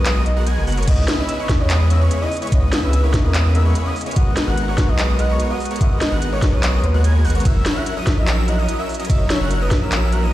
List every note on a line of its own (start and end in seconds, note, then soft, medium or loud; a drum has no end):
0.00 0.58 B1 loud
0.00 0.13 B4 medium
0.05 0.24 G#3 medium
0.05 0.24 B3 medium
0.05 0.24 F#4 medium
0.05 0.24 A#4 medium
0.05 0.24 D#5 loud
0.05 0.24 D#6 loud
0.05 clap loud
0.05 closed hi-hat medium
0.26 0.44 D#5 medium
0.26 closed hi-hat medium
0.36 0.44 G#3 medium
0.36 0.44 B3 medium
0.36 0.44 F#4 medium
0.36 0.44 A#4 medium
0.36 0.44 F#5 medium
0.36 0.44 F#6 medium
0.47 0.65 G#3 medium
0.47 0.65 B3 medium
0.47 0.65 F#4 medium
0.47 0.65 A#4 medium
0.47 0.65 G#5 medium
0.47 0.65 G#6 medium
0.47 closed hi-hat medium
0.57 0.86 F#1 medium
0.67 0.75 G#3 medium
0.67 0.75 B3 medium
0.67 0.75 F#4 medium
0.67 0.75 A#4 medium
0.67 0.75 F#5 loud
0.67 0.75 F#6 loud
0.67 open hi-hat medium
0.72 closed hi-hat medium
0.77 0.85 G#3 loud
0.77 0.85 B3 medium
0.77 0.85 F#4 medium
0.77 0.85 A#4 medium
0.77 0.85 C#5 loud
0.77 0.85 C#6 loud
0.77 closed hi-hat soft
0.82 1.46 C#3 medium
0.82 closed hi-hat medium
0.87 1.07 C#2 loud
0.87 1.06 G#3 medium
0.87 1.47 B3 medium
0.87 1.06 C#4 medium
0.87 1.06 E4 medium
0.87 1.47 E4 medium
0.87 1.06 B4 medium
0.87 1.06 D#5 loud
0.87 1.06 D#5 medium
0.87 1.48 D#5 medium
0.87 1.06 D#6 medium
0.87 kick loud
0.87 closed hi-hat medium
0.87 crash medium
1.08 1.16 G#3 medium
1.08 1.16 C#4 medium
1.08 1.16 E4 medium
1.08 1.16 B4 medium
1.08 1.16 D#5 medium
1.08 1.16 D#6 medium
1.08 snare medium
1.08 closed hi-hat medium
1.18 1.37 G#3 medium
1.18 1.37 C#4 medium
1.18 1.37 E4 medium
1.18 1.37 B4 medium
1.18 1.61 D#5 loud
1.18 1.37 E5 medium
1.18 1.37 E6 medium
1.29 closed hi-hat medium
1.39 1.57 G#3 medium
1.39 1.57 C#4 medium
1.39 1.57 E4 medium
1.39 1.57 B4 medium
1.39 1.57 C#5 loud
1.39 1.57 C#6 loud
1.48 2.10 E2 loud
1.48 1.87 C#3 medium
1.48 1.88 B3 medium
1.48 1.88 E4 medium
1.48 1.88 D#5 medium
1.48 kick loud
1.48 snare medium
1.48 closed hi-hat medium
1.60 1.68 G#3 medium
1.60 1.68 C#4 medium
1.60 1.68 E4 medium
1.60 1.68 B4 medium
1.60 1.78 C#5 medium
1.60 1.68 D#5 medium
1.60 1.68 D#6 medium
1.70 1.88 G#3 loud
1.70 1.88 C#4 medium
1.70 1.88 E4 medium
1.70 1.88 B4 medium
1.70 1.88 D#5 loud
1.70 1.88 D#6 loud
1.70 clap loud
1.70 closed hi-hat medium
1.89 2.49 C#3 medium
1.89 1.98 G#3 medium
1.89 2.49 B3 medium
1.89 1.98 C#4 medium
1.89 1.98 E4 medium
1.89 2.50 E4 medium
1.89 1.98 B4 medium
1.89 2.23 C#5 medium
1.89 2.51 D#5 medium
1.89 1.98 E5 medium
1.89 1.98 E6 medium
1.89 closed hi-hat medium
2.01 2.19 G#3 medium
2.01 2.19 C#4 medium
2.01 2.19 E4 medium
2.01 2.19 B4 medium
2.01 2.19 C#5 medium
2.01 2.19 C#6 medium
2.11 closed hi-hat medium
2.21 2.31 G#3 medium
2.21 2.31 C#4 medium
2.21 2.31 E4 medium
2.21 2.31 B4 medium
2.21 2.39 D#5 loud
2.21 2.31 D#5 loud
2.21 2.31 D#6 medium
2.31 open hi-hat medium
2.37 closed hi-hat medium
2.42 2.50 G#3 medium
2.42 2.50 C#4 medium
2.42 2.50 E4 medium
2.42 2.50 B4 medium
2.42 2.50 C#5 medium
2.42 2.50 C#6 medium
2.42 closed hi-hat medium
2.47 3.10 C#3 medium
2.47 closed hi-hat medium
2.52 2.71 C#2 loud
2.52 2.70 G#3 medium
2.52 3.11 B3 medium
2.52 2.70 C#4 medium
2.52 2.70 E4 medium
2.52 3.12 E4 medium
2.52 2.70 B4 medium
2.52 2.64 C#5 medium
2.52 2.70 D#5 medium
2.52 3.12 D#5 medium
2.52 2.70 D#6 medium
2.52 kick loud
2.52 closed hi-hat medium
2.72 2.81 G#3 medium
2.72 2.81 C#4 medium
2.72 2.81 E4 medium
2.72 3.05 B4 medium
2.72 2.81 B4 medium
2.72 2.81 D#5 medium
2.72 2.81 D#6 medium
2.72 snare medium
2.72 closed hi-hat medium
2.83 3.15 C#2 medium
2.83 3.01 G#3 medium
2.83 3.01 C#4 medium
2.83 3.01 E4 medium
2.83 3.01 B4 medium
2.83 3.01 E5 medium
2.83 3.01 E6 medium
2.93 closed hi-hat medium
3.03 3.22 G#3 medium
3.03 3.22 C#4 medium
3.03 3.22 E4 medium
3.03 3.15 A#4 medium
3.03 3.22 B4 medium
3.03 3.22 C#5 loud
3.03 3.22 C#6 loud
3.13 3.74 E2 loud
3.13 3.52 C#3 medium
3.13 3.52 B3 medium
3.13 3.53 E4 medium
3.13 3.53 D#5 medium
3.13 kick loud
3.13 snare medium
3.13 closed hi-hat medium
3.24 3.33 G#3 medium
3.24 3.33 C#4 medium
3.24 3.33 E4 medium
3.24 3.42 A#4 loud
3.24 3.33 B4 medium
3.24 3.33 D#5 medium
3.24 3.33 D#6 medium
3.34 3.52 G#3 medium
3.34 3.52 C#4 medium
3.34 3.52 E4 medium
3.34 3.52 B4 medium
3.34 3.52 D#5 loud
3.34 3.52 D#6 loud
3.34 clap loud
3.34 closed hi-hat medium
3.53 4.13 C#3 medium
3.53 3.63 G#3 medium
3.53 4.14 B3 medium
3.53 3.63 C#4 medium
3.53 3.63 E4 medium
3.53 4.14 E4 medium
3.53 3.73 A#4 loud
3.53 3.63 B4 medium
3.53 4.15 D#5 medium
3.53 3.63 E5 medium
3.53 3.63 E6 medium
3.53 closed hi-hat medium
3.65 3.83 G#3 medium
3.65 3.83 C#4 medium
3.65 3.83 E4 medium
3.65 3.83 B4 medium
3.65 3.83 C#5 medium
3.65 3.83 C#6 medium
3.75 closed hi-hat medium
3.86 3.95 G#3 medium
3.86 3.95 C#4 medium
3.86 3.95 E4 medium
3.86 3.95 B4 medium
3.86 3.95 D#5 loud
3.86 3.95 D#6 medium
3.96 open hi-hat medium
4.01 closed hi-hat medium
4.06 4.14 G#3 medium
4.06 4.14 C#4 medium
4.06 4.14 E4 medium
4.06 4.14 B4 medium
4.06 4.14 C#5 medium
4.06 4.14 C#6 medium
4.06 closed hi-hat medium
4.11 4.75 G#3 medium
4.11 closed hi-hat medium
4.16 4.35 G#1 loud
4.16 4.35 G#3 medium
4.16 4.35 B3 medium
4.16 4.75 F#4 medium
4.16 4.35 F#4 medium
4.16 4.35 A#4 medium
4.16 4.76 A#4 medium
4.16 4.77 B4 loud
4.16 4.35 D#5 medium
4.16 4.34 F#5 loud
4.16 4.35 D#6 medium
4.16 kick loud
4.16 closed hi-hat medium
4.37 4.45 G#3 medium
4.37 4.45 B3 medium
4.37 4.45 F#4 medium
4.37 4.45 A#4 medium
4.37 4.45 D#5 medium
4.37 4.45 D#6 medium
4.37 snare medium
4.37 closed hi-hat medium
4.47 4.80 G#1 medium
4.47 4.66 G#3 medium
4.47 4.66 B3 medium
4.47 4.66 F#4 medium
4.47 4.66 A#4 medium
4.47 4.90 F#5 loud
4.47 4.66 F#5 medium
4.47 4.65 F#6 medium
4.57 closed hi-hat medium
4.68 4.86 G#3 medium
4.68 4.86 B3 medium
4.68 4.86 F#4 medium
4.68 4.86 A#4 medium
4.68 4.86 C#5 loud
4.68 4.86 C#6 loud
4.77 5.38 B1 loud
4.77 5.16 G#3 medium
4.77 5.17 F#4 medium
4.77 5.17 A#4 medium
4.77 5.17 B4 medium
4.77 kick loud
4.77 snare medium
4.77 closed hi-hat medium
4.88 4.97 G#3 medium
4.88 4.97 B3 medium
4.88 4.97 F#4 medium
4.88 4.97 A#4 medium
4.88 5.06 D#5 loud
4.88 4.97 D#5 medium
4.88 4.97 D#6 medium
4.99 5.17 G#3 medium
4.99 5.17 B3 medium
4.99 5.17 F#4 medium
4.99 5.17 A#4 medium
4.99 5.17 D#5 loud
4.99 5.17 D#6 loud
4.99 clap loud
4.99 closed hi-hat medium
5.17 5.77 G#3 medium
5.17 5.27 G#3 medium
5.17 5.27 B3 medium
5.17 5.78 F#4 medium
5.17 5.27 F#4 medium
5.17 5.27 A#4 medium
5.17 5.79 A#4 medium
5.17 5.79 B4 medium
5.17 5.52 D#5 medium
5.17 5.27 F#5 medium
5.17 5.27 F#6 medium
5.17 closed hi-hat medium
5.30 5.48 G#3 medium
5.30 5.48 B3 medium
5.30 5.48 F#4 medium
5.30 5.48 A#4 medium
5.30 5.48 C#5 medium
5.30 5.48 C#6 medium
5.40 closed hi-hat medium
5.50 5.59 G#3 medium
5.50 5.59 B3 medium
5.50 5.59 F#4 medium
5.50 5.59 A#4 medium
5.50 5.59 D#5 medium
5.50 5.68 F#5 loud
5.50 5.59 D#6 loud
5.60 open hi-hat medium
5.65 closed hi-hat medium
5.71 5.79 G#3 medium
5.71 5.79 B3 medium
5.71 5.78 F#4 medium
5.71 5.78 A#4 medium
5.71 5.79 C#5 medium
5.71 5.78 C#6 medium
5.71 closed hi-hat medium
5.76 6.39 G#3 medium
5.76 closed hi-hat medium
5.80 6.00 G#1 loud
5.80 5.99 G#3 medium
5.80 5.99 B3 medium
5.80 6.40 F#4 medium
5.80 5.99 F#4 medium
5.80 5.99 A#4 medium
5.80 6.40 A#4 medium
5.80 6.41 B4 medium
5.80 5.99 D#5 medium
5.80 5.93 E5 medium
5.80 5.99 D#6 medium
5.80 kick loud
5.80 closed hi-hat medium
6.01 6.09 G#3 medium
6.01 6.09 B3 medium
6.01 6.09 F#4 medium
6.01 6.09 A#4 medium
6.01 6.19 D#5 loud
6.01 6.09 D#5 medium
6.01 6.09 D#6 medium
6.01 snare medium
6.01 closed hi-hat medium
6.12 6.44 G#1 medium
6.12 6.30 G#3 medium
6.12 6.30 B3 medium
6.12 6.30 F#4 medium
6.12 6.30 A#4 medium
6.12 6.30 F#5 medium
6.12 6.30 F#6 medium
6.22 closed hi-hat medium
6.32 6.50 G#3 medium
6.32 6.50 B3 medium
6.32 6.50 F#4 medium
6.32 6.50 A#4 medium
6.32 6.44 C#5 medium
6.32 6.50 C#5 loud
6.32 6.50 C#6 loud
6.41 6.83 B1 loud
6.41 6.81 G#3 medium
6.41 6.81 F#4 medium
6.41 6.81 A#4 medium
6.41 6.82 B4 medium
6.41 kick loud
6.41 snare medium
6.41 closed hi-hat medium
6.53 6.62 G#3 medium
6.53 6.62 B3 medium
6.53 6.62 F#4 medium
6.53 6.62 A#4 medium
6.53 6.85 C#5 loud
6.53 6.62 D#5 medium
6.53 6.61 D#6 medium
6.63 6.81 G#3 medium
6.63 6.81 B3 medium
6.63 6.81 F#4 medium
6.63 6.81 A#4 medium
6.63 6.81 D#5 loud
6.63 6.81 D#6 loud
6.63 clap loud
6.63 closed hi-hat medium
6.82 7.26 D#2 medium
6.82 7.42 G#3 medium
6.82 7.43 F#4 medium
6.82 7.43 A#4 medium
6.82 7.02 B4 loud
6.82 closed hi-hat medium
6.86 7.44 B4 medium
6.94 7.02 G#3 medium
6.94 7.02 B3 medium
6.94 7.02 F#4 medium
6.94 7.02 A#4 medium
6.94 7.02 F#5 medium
6.94 7.02 F#6 medium
7.04 7.22 G#3 medium
7.04 7.22 B3 medium
7.04 7.22 F#4 medium
7.04 7.22 A#4 medium
7.04 7.22 G#5 medium
7.04 7.22 G#6 medium
7.04 closed hi-hat medium
7.25 7.44 G#1 loud
7.25 7.33 G#3 loud
7.25 7.33 B3 medium
7.25 7.33 F#4 medium
7.25 7.33 A#4 medium
7.25 7.33 F#5 loud
7.25 7.33 F#6 loud
7.25 open hi-hat medium
7.30 closed hi-hat medium
7.35 7.43 G#3 loud
7.35 7.43 B3 medium
7.35 7.43 F#4 medium
7.35 7.43 A#4 medium
7.35 7.43 C#5 loud
7.35 7.43 C#6 loud
7.35 closed hi-hat soft
7.40 8.03 F#3 medium
7.40 closed hi-hat medium
7.45 7.64 F#1 loud
7.45 7.63 F#3 medium
7.45 7.63 C#4 medium
7.45 7.63 E4 medium
7.45 8.04 F#4 medium
7.45 7.63 A#4 medium
7.45 8.05 A#4 medium
7.45 7.63 E5 medium
7.45 7.63 E5 loud
7.45 8.05 E5 medium
7.45 7.63 E6 medium
7.45 kick loud
7.45 closed hi-hat medium
7.45 ride soft
7.66 7.74 F#3 medium
7.66 7.74 C#4 medium
7.66 7.74 E4 medium
7.66 7.74 A#4 medium
7.66 7.74 E5 medium
7.66 7.74 E6 medium
7.66 snare medium
7.66 closed hi-hat medium
7.76 7.94 F#3 medium
7.76 7.94 C#4 medium
7.76 7.94 E4 medium
7.76 7.94 A#4 medium
7.76 8.00 E5 loud
7.76 7.94 F#5 medium
7.76 7.94 F#6 medium
7.86 closed hi-hat medium
7.97 8.15 F#3 medium
7.97 8.15 C#4 medium
7.97 8.15 E4 medium
7.97 8.15 A#4 medium
7.97 8.15 D#5 loud
7.97 8.15 D#6 loud
8.06 8.67 A#1 loud
8.06 8.45 F#3 medium
8.06 8.45 F#4 medium
8.06 8.46 A#4 medium
8.06 8.46 E5 medium
8.06 kick loud
8.06 snare medium
8.06 closed hi-hat medium
8.17 8.26 F#3 medium
8.17 8.26 C#4 medium
8.17 8.26 E4 medium
8.17 8.26 A#4 medium
8.17 8.35 D#5 loud
8.17 8.26 E5 medium
8.17 8.26 E6 medium
8.27 8.46 F#3 medium
8.27 8.46 C#4 medium
8.27 8.46 E4 medium
8.27 8.46 A#4 medium
8.27 8.46 E5 loud
8.27 8.46 E6 loud
8.27 clap loud
8.27 closed hi-hat medium
8.46 9.06 F#3 medium
8.46 8.56 F#3 medium
8.46 8.56 C#4 medium
8.46 8.56 E4 medium
8.46 9.07 F#4 medium
8.46 8.56 A#4 medium
8.46 9.07 A#4 medium
8.46 8.66 D#5 loud
8.46 8.56 F#5 medium
8.46 8.56 F#6 medium
8.46 closed hi-hat medium
8.50 9.08 E5 medium
8.58 8.76 F#3 medium
8.58 8.76 C#4 medium
8.58 8.76 E4 medium
8.58 8.76 A#4 medium
8.58 8.76 D#5 medium
8.58 8.76 D#6 medium
8.69 closed hi-hat medium
8.79 8.88 F#3 medium
8.79 8.88 C#4 medium
8.79 8.88 E4 medium
8.79 8.88 A#4 medium
8.79 8.88 E5 loud
8.79 8.97 E5 loud
8.79 8.88 E6 medium
8.89 open hi-hat medium
8.94 closed hi-hat medium
8.99 9.07 F#3 medium
8.99 9.07 C#4 medium
8.99 9.07 E4 medium
8.99 9.07 A#4 medium
8.99 9.07 D#5 medium
8.99 9.07 D#6 medium
8.99 closed hi-hat soft
9.05 9.68 F#3 medium
9.05 closed hi-hat medium
9.09 9.28 F#1 loud
9.09 9.28 F#3 medium
9.09 9.28 C#4 medium
9.09 9.28 E4 medium
9.09 9.68 F#4 medium
9.09 9.28 A#4 medium
9.09 9.69 A#4 medium
9.09 9.31 D#5 medium
9.09 9.28 E5 medium
9.09 9.70 E5 medium
9.09 9.28 E6 medium
9.09 kick loud
9.09 closed hi-hat medium
9.09 ride soft
9.30 9.38 F#3 medium
9.30 9.38 C#4 medium
9.30 9.38 E4 medium
9.30 9.38 A#4 medium
9.30 9.48 C#5 medium
9.30 9.38 E5 medium
9.30 9.38 E6 medium
9.30 snare medium
9.30 closed hi-hat medium
9.40 9.73 F#1 medium
9.40 9.59 F#3 medium
9.40 9.59 C#4 medium
9.40 9.59 E4 medium
9.40 9.59 A#4 medium
9.40 9.59 F#5 medium
9.40 9.59 F#6 medium
9.51 closed hi-hat medium
9.61 9.79 F#3 medium
9.61 9.79 C#4 medium
9.61 9.79 E4 medium
9.61 9.79 A#4 medium
9.61 9.73 B4 medium
9.61 9.79 D#5 loud
9.61 9.79 D#6 loud
9.70 10.32 A#1 loud
9.70 10.09 F#3 medium
9.70 10.10 F#4 medium
9.70 10.10 A#4 medium
9.70 10.10 E5 medium
9.70 kick loud
9.70 snare medium
9.70 closed hi-hat medium
9.82 9.90 F#3 medium
9.82 9.90 C#4 medium
9.82 9.90 E4 medium
9.82 9.90 A#4 medium
9.82 10.00 A#4 loud
9.82 9.90 E5 medium
9.82 9.90 E6 medium
9.92 10.10 F#3 medium
9.92 10.10 C#4 medium
9.92 10.10 E4 medium
9.92 10.10 A#4 medium
9.92 10.10 E5 loud
9.92 10.10 E6 loud
9.92 clap loud
9.92 closed hi-hat medium
10.10 10.33 F#3 medium
10.10 10.20 F#3 medium
10.10 10.20 C#4 medium
10.10 10.20 E4 medium
10.10 10.33 F#4 medium
10.10 10.30 A#4 loud
10.10 10.20 A#4 medium
10.10 10.33 A#4 medium
10.10 10.20 F#5 medium
10.10 10.20 F#6 medium
10.10 closed hi-hat medium
10.14 10.33 E5 medium
10.23 10.33 F#3 medium
10.23 10.33 C#4 medium
10.23 10.33 E4 medium
10.23 10.33 A#4 medium
10.23 10.33 D#5 medium
10.23 10.33 D#6 medium